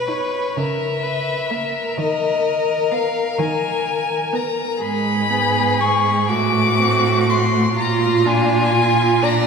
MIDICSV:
0, 0, Header, 1, 5, 480
1, 0, Start_track
1, 0, Tempo, 946372
1, 1003, Time_signature, 6, 3, 24, 8
1, 2442, Tempo, 980392
1, 4720, End_track
2, 0, Start_track
2, 0, Title_t, "Violin"
2, 0, Program_c, 0, 40
2, 44, Note_on_c, 0, 73, 50
2, 294, Note_on_c, 0, 76, 60
2, 301, Note_off_c, 0, 73, 0
2, 1004, Note_off_c, 0, 76, 0
2, 1011, Note_on_c, 0, 75, 67
2, 1480, Note_on_c, 0, 77, 59
2, 1488, Note_off_c, 0, 75, 0
2, 1716, Note_on_c, 0, 80, 67
2, 1724, Note_off_c, 0, 77, 0
2, 2204, Note_on_c, 0, 82, 58
2, 2212, Note_off_c, 0, 80, 0
2, 2441, Note_on_c, 0, 83, 77
2, 2448, Note_off_c, 0, 82, 0
2, 2926, Note_on_c, 0, 85, 66
2, 2934, Note_off_c, 0, 83, 0
2, 3166, Note_off_c, 0, 85, 0
2, 3168, Note_on_c, 0, 86, 83
2, 3657, Note_on_c, 0, 84, 69
2, 3665, Note_off_c, 0, 86, 0
2, 3892, Note_off_c, 0, 84, 0
2, 3897, Note_on_c, 0, 82, 69
2, 4130, Note_on_c, 0, 80, 80
2, 4137, Note_off_c, 0, 82, 0
2, 4606, Note_on_c, 0, 82, 67
2, 4613, Note_off_c, 0, 80, 0
2, 4720, Note_off_c, 0, 82, 0
2, 4720, End_track
3, 0, Start_track
3, 0, Title_t, "Violin"
3, 0, Program_c, 1, 40
3, 0, Note_on_c, 1, 71, 51
3, 291, Note_on_c, 1, 70, 40
3, 299, Note_off_c, 1, 71, 0
3, 523, Note_on_c, 1, 71, 43
3, 531, Note_off_c, 1, 70, 0
3, 762, Note_on_c, 1, 70, 49
3, 769, Note_off_c, 1, 71, 0
3, 2440, Note_off_c, 1, 70, 0
3, 2445, Note_on_c, 1, 68, 62
3, 3166, Note_on_c, 1, 66, 56
3, 3174, Note_off_c, 1, 68, 0
3, 3885, Note_off_c, 1, 66, 0
3, 3888, Note_on_c, 1, 65, 67
3, 4600, Note_on_c, 1, 74, 60
3, 4607, Note_off_c, 1, 65, 0
3, 4720, Note_off_c, 1, 74, 0
3, 4720, End_track
4, 0, Start_track
4, 0, Title_t, "Viola"
4, 0, Program_c, 2, 41
4, 42, Note_on_c, 2, 63, 46
4, 228, Note_off_c, 2, 63, 0
4, 764, Note_on_c, 2, 58, 41
4, 941, Note_off_c, 2, 58, 0
4, 1480, Note_on_c, 2, 59, 47
4, 1657, Note_off_c, 2, 59, 0
4, 2196, Note_on_c, 2, 59, 46
4, 2379, Note_off_c, 2, 59, 0
4, 2445, Note_on_c, 2, 56, 49
4, 2681, Note_on_c, 2, 59, 43
4, 2689, Note_off_c, 2, 56, 0
4, 2923, Note_on_c, 2, 56, 45
4, 2930, Note_off_c, 2, 59, 0
4, 3164, Note_off_c, 2, 56, 0
4, 3169, Note_on_c, 2, 57, 44
4, 3410, Note_on_c, 2, 60, 42
4, 3418, Note_off_c, 2, 57, 0
4, 3650, Note_on_c, 2, 57, 41
4, 3657, Note_off_c, 2, 60, 0
4, 3889, Note_off_c, 2, 57, 0
4, 3892, Note_on_c, 2, 65, 49
4, 4125, Note_on_c, 2, 62, 49
4, 4132, Note_off_c, 2, 65, 0
4, 4358, Note_on_c, 2, 65, 42
4, 4365, Note_off_c, 2, 62, 0
4, 4598, Note_on_c, 2, 62, 45
4, 4606, Note_off_c, 2, 65, 0
4, 4720, Note_off_c, 2, 62, 0
4, 4720, End_track
5, 0, Start_track
5, 0, Title_t, "Cello"
5, 0, Program_c, 3, 42
5, 0, Note_on_c, 3, 47, 50
5, 161, Note_off_c, 3, 47, 0
5, 288, Note_on_c, 3, 49, 55
5, 874, Note_off_c, 3, 49, 0
5, 1002, Note_on_c, 3, 51, 54
5, 1590, Note_off_c, 3, 51, 0
5, 1718, Note_on_c, 3, 51, 58
5, 2312, Note_off_c, 3, 51, 0
5, 2440, Note_on_c, 3, 44, 54
5, 3166, Note_on_c, 3, 45, 55
5, 3173, Note_off_c, 3, 44, 0
5, 3886, Note_off_c, 3, 45, 0
5, 3888, Note_on_c, 3, 46, 60
5, 4720, Note_off_c, 3, 46, 0
5, 4720, End_track
0, 0, End_of_file